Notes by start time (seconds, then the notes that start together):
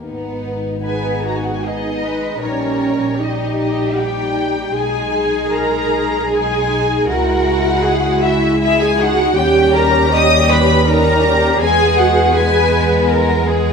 0.02 G#1 B3 D#4
0.83 B3 D#4 G#4 B4 G#5
1.23 F#4
1.27 A#5
1.36 G#5
1.43 F#5
1.54 G#5
1.62 B3 D#4 G#4 D#5
2.01 G#3 B4
2.40 A#1 G3 C#4 D#4 A#4 C#5
3.18 G3 D#4 G4 D#5
3.57 D#4 D#5
3.96 G3 D#4 G4 G5
4.74 B1 G#3 D#4 G#4 G#5
5.13 G#4
5.51 A#4 A#5
6.30 G#3 D#4 G#4 G#5
7.07 C#2 G#3 E4 F#4 A#4 F#5
7.83 G#4
8.22 E4 F#4 E5
8.61 G#3 E4 G#4 E5
8.79 G#4 G#5
8.97 D#4 F#4 F#5
9.34 D#2 G3 C#4 G4 G5
9.73 A#4 A#5
10.11 G3 C#4 D#5 D#6
10.50 B4 B5
10.86 G3 C#4 D#4 A#4 A#5
11.23 G4
11.58 E2 G#3 B3 G#4 G#5
11.97 F#4 F#5
12.34 G#3 B3 G#4 B4 G#5
13.09 A#4
13.47 G#4